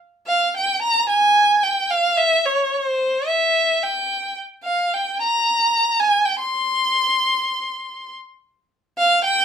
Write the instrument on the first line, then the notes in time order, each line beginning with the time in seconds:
violin
0.27 F5
0.57 G5
0.82 A#5
1.09 G#5
1.63 G5
1.90 F5
2.17 E5
2.46 C#5
2.73 C#5
2.84 C5
3.27 E5
3.83 G5
4.64 F5
4.94 G5
5.20 A#5
6.00 G#5
6.25 G5
6.39 C6
8.98 F5
9.25 G5